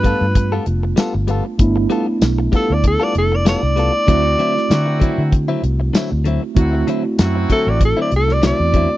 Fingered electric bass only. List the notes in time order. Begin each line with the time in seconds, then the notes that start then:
Already playing: G2
0.21 G2
0.67 F1
1.15 G1
1.59 G1
2.22 B1
2.70 D2
3.15 F1
3.63 C2
4.08 D2
4.70 D3
5.18 D3
5.63 C2
6.12 D2
6.57 D2
7.19 F#2
7.67 A1
8.12 C2
8.60 E2